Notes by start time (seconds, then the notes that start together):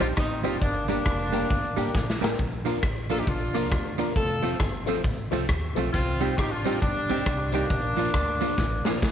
0.00 A#1 G3 C4 D4 D#4 F4 G4 C5, closed hi-hat, tambourine
0.17 A1 C4 D#4, kick, cross-stick, closed hi-hat
0.43 F#1 G3 C4 D4 D#4 F4 G4 C5, closed hi-hat, tambourine
0.61 G1 A#3 D4, kick, closed hi-hat
0.88 G3 A#3 D4 G4 A#4, closed hi-hat, tambourine
1.06 F1 G4 A#4, kick, cross-stick, closed hi-hat
1.32 G3 A#3 D4 G4 A#4, closed hi-hat, tambourine
1.50 G1, kick, closed hi-hat
1.76 A1 G3 A#3 D4 G4 A#4, closed hi-hat, tambourine
1.95 A#1, kick, snare
2.10 snare
2.21 A1 G3 A#3 D4 G4 A#4, snare, tambourine
2.39 A#1, kick, closed hi-hat
2.65 F3 A#3 D4 F4 A#4, closed hi-hat, tambourine
2.83 A1 F4 A#4, kick, cross-stick, closed hi-hat
3.09 F3 A#3 D4 F4 A4 A#4, closed hi-hat, tambourine
3.19 D#4 G4
3.27 A#1 D4 F4, kick, closed hi-hat
3.54 C2 F3 A#3 D4 F4 A#4, closed hi-hat, tambourine
3.72 D2, muted hollow-body jazz guitar stroke, kick, cross-stick, closed hi-hat
3.98 F3 A#3 D4 F4 A#4, closed hi-hat, tambourine
4.16 F1 F4 A4, kick, closed hi-hat
4.42 F3 A3 C4 F4 A4, closed hi-hat, tambourine
4.60 G1 F4 A4, kick, cross-stick, closed hi-hat
4.86 F3 A3 C4 F4 A4, closed hi-hat, tambourine
5.04 A1, kick, closed hi-hat
5.31 C2 F3 A3 C4 F4 A4, closed hi-hat, tambourine
5.49 D#2, kick, cross-stick, closed hi-hat
5.75 B1 F3 A3 C4 F4 A4, closed hi-hat, tambourine
5.93 C2 C4 F4, kick, closed hi-hat
6.20 G3 C4 D#4 G4, closed hi-hat, tambourine
6.37 A1 D#4 G4, kick, cross-stick, closed hi-hat
6.51 D4 F4
6.64 G3 C4 D#4 G4, closed hi-hat, tambourine
6.82 G1 G3 D4, kick, closed hi-hat
7.09 A#1 G3 C4 D#4 G4, closed hi-hat, tambourine
7.26 C2, muted hollow-body jazz guitar stroke, kick, cross-stick, closed hi-hat
7.52 G3 A#3 C4 D4 D#4 G4, closed hi-hat, tambourine
7.70 A#1, kick, closed hi-hat
7.96 F3 A#3 D4 F4, closed hi-hat, tambourine
8.14 D2 D4 F4, kick, cross-stick, closed hi-hat
8.40 F3 A#3 D4 F4, closed hi-hat, tambourine
8.58 A1, kick, snare
8.84 A#1 F3 A#3 D4 F4, snare, tambourine
9.02 D2, kick, snare